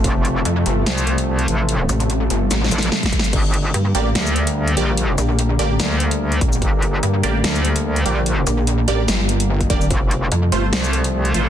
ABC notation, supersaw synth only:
X:1
M:4/4
L:1/8
Q:"Swing 16ths" 1/4=146
K:Gm
V:1 name="Supersaw synth"
z8 | z8 | z3 [B,Gd] z3 [B,Gd] | z3 [B,Gd] z4 |
z3 [B,Gd] z3 [B,Gd] | z3 [B,Gd] z3 [B,Gd] | z3 [A,Fc] z3 [A,Fc] |]